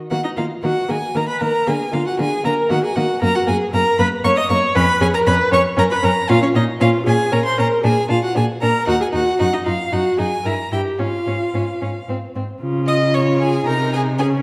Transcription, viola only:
0.11 0.16 F#4 medium
0.24 0.29 D#4 medium
0.37 0.45 F4 medium
0.64 0.88 F#4 medium
0.89 0.97 G#4 medium
1.15 1.21 A#4 medium
1.28 1.43 B4 medium
1.41 1.69 A#4 medium
1.67 1.93 G#4 medium
1.93 2.08 F4 medium
2.06 2.21 F#4 medium
2.20 2.46 G#4 medium
2.45 2.72 A#4 medium
2.71 2.85 F#4 medium
2.83 2.97 G#4 medium
2.97 3.22 F#4 medium
3.23 3.35 A#4 loud
3.36 3.41 F#4 medium
3.49 3.74 G#4 medium
3.74 3.99 A#4 medium
3.99 4.07 B4 medium
4.25 4.38 C#5 loud
4.37 4.49 D#5 medium
4.49 4.76 C#5 loud
4.75 5.02 B4 loud
5.01 5.15 G#4 medium
5.14 5.28 A#4 medium
5.27 5.52 B4 loud
5.52 5.60 C#5 loud
5.78 5.83 A#4 loud
5.91 5.96 B4 medium
6.04 6.12 A#4 loud
6.29 6.41 F4 loud
6.42 6.47 C#4 medium
6.55 6.63 D#4 medium
6.81 7.06 F4 medium
7.07 7.32 G#4 medium
7.32 7.38 A#4 medium
7.45 7.59 C5 medium
7.58 7.83 A#4 medium
7.84 8.10 G#4 medium
8.10 8.23 F4 medium
8.23 8.28 F#4 medium
8.36 8.44 G#4 medium
8.62 8.87 A#4 medium
8.88 8.93 F#4 medium
9.00 9.06 G#4 medium
9.13 9.39 F#4 medium
9.40 9.45 F#4 medium
9.53 9.58 D#4 medium
9.66 9.74 F4 medium
9.92 10.20 F#4 medium
10.18 10.44 G#4 medium
10.44 10.52 A#4 medium
10.72 11.01 G4 medium
10.99 12.08 F4 medium
12.62 13.11 F4 medium
13.15 13.66 F4 medium
13.66 14.20 D#4 medium
14.19 14.42 C#4 medium

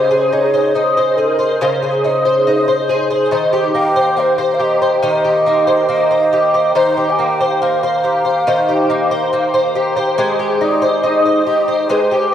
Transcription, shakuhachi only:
0.00 0.34 C5 medium
0.33 0.77 C#5 medium
0.75 1.19 C5 medium
1.17 1.28 A4 medium
1.28 1.76 A#4 medium
2.05 2.43 C5 medium
2.47 3.06 C5 medium
3.77 4.21 G5 medium
4.20 4.56 C5 medium
4.54 4.64 F5 medium
4.62 5.04 D#5 medium
5.06 5.86 D#5 medium
5.92 6.72 D#5 medium
6.78 7.12 C5 medium
7.10 7.22 G#5 medium
7.20 7.64 G5 medium
7.62 9.75 F5 medium
10.60 11.06 D5 medium
11.04 11.91 D#5 medium
11.90 12.05 B4 medium
12.05 12.34 C5 medium

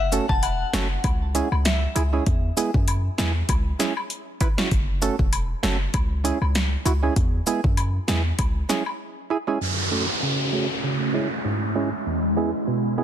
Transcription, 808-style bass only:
0.00 0.19 F#1 loud
0.29 0.64 E1 medium
0.73 0.98 F#1 medium
1.04 1.42 C#2 loud
1.52 1.87 C#2 medium
1.96 2.20 C#2 medium
2.27 2.51 E2 loud
2.74 3.09 F#2 medium
3.19 3.43 E2 loud
3.49 3.73 C#2 loud
4.72 5.09 F#1 loud
5.19 5.54 E1 medium
5.63 5.87 F#1 medium
5.94 6.32 C#2 loud
6.41 6.76 C#2 medium
6.86 7.10 C#2 medium
7.16 7.41 E2 loud
7.64 7.99 F#2 medium
8.08 8.32 E2 loud
8.39 8.63 C#2 loud

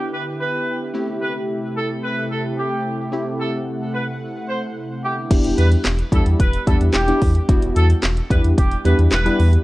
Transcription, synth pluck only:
0.00 0.90 B3 medium
0.00 0.90 D4 medium
0.00 0.90 E4 medium
0.00 0.90 G4 medium
0.94 3.08 A3 medium
0.94 3.08 C4 medium
0.94 3.09 E4 medium
0.94 3.09 G4 medium
3.12 4.99 A3 medium
3.12 5.00 C4 medium
3.12 5.00 E4 medium
3.12 5.00 G4 medium
5.30 5.67 G3 medium
5.30 5.68 B3 medium
5.30 5.68 D4 medium
5.30 5.68 E4 medium
5.30 5.68 G4 medium
6.12 6.37 G3 medium
6.12 6.37 B3 medium
6.12 6.37 D4 medium
6.12 6.37 E4 medium
6.12 6.37 G4 medium
6.67 6.85 G3 medium
6.67 6.85 B3 medium
6.67 6.86 D4 medium
6.67 6.86 E4 medium
6.67 6.86 G4 medium
7.08 7.26 G3 medium
7.08 7.26 B3 medium
7.08 7.27 D4 medium
7.08 7.27 E4 medium
7.08 7.27 G4 medium
7.49 7.86 G3 medium
7.49 7.86 B3 medium
7.49 7.86 D4 medium
7.49 7.86 E4 medium
7.49 7.86 F#4 loud
8.30 8.55 G3 medium
8.30 8.55 B3 medium
8.30 8.55 D4 medium
8.30 8.55 E4 medium
8.30 8.55 G4 medium
8.85 9.03 G3 medium
8.85 9.04 B3 medium
8.85 9.04 D4 medium
8.85 9.04 E4 medium
8.85 9.04 G4 medium
9.26 9.44 G3 medium
9.26 9.44 B3 medium
9.26 9.44 D4 medium
9.26 9.45 E4 medium
9.26 9.45 G4 medium

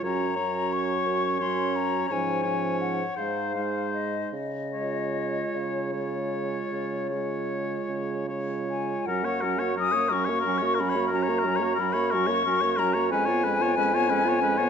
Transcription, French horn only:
0.02 0.37 F#3 soft
0.38 1.38 F#3 soft
1.41 2.09 F#3 soft
2.10 2.45 F3 soft
2.46 3.01 F3 soft
3.18 3.55 G#3 soft
3.56 4.32 G#3 soft
4.74 5.92 G#3 soft
5.94 7.09 G#3 soft
7.12 8.27 G#3 soft
8.29 9.06 G#3 soft
9.08 9.25 F#3 medium
9.24 9.44 A#3 soft
9.43 9.60 F#3 soft
9.59 9.75 A#3 soft
9.76 9.96 F#3 soft
9.94 10.12 A#3 soft
10.10 10.30 F#3 soft
10.29 10.45 A#3 medium
10.46 10.64 F#3 medium
10.63 10.82 A#3 medium
10.81 10.98 F#3 medium
10.97 11.12 A#3 soft
11.13 11.30 F#3 medium
11.29 11.46 A#3 soft
11.44 11.63 F#3 medium
11.62 11.78 A#3 medium
11.78 11.97 F#3 medium
11.95 12.15 A#3 medium
12.14 12.30 F#3 medium
12.29 12.46 A#3 medium
12.47 12.65 F#3 medium
12.63 12.81 A#3 medium
12.80 12.99 F#3 medium
12.97 13.12 A#3 medium
13.13 13.31 G#3 medium
13.29 13.46 B3 medium
13.45 13.63 G#3 medium
13.62 13.77 B3 medium
13.77 13.97 G#3 medium
13.96 14.12 B3 medium
14.10 14.28 G#3 medium
14.27 14.42 B3 medium
14.42 14.61 G#3 medium
14.59 14.69 B3 medium

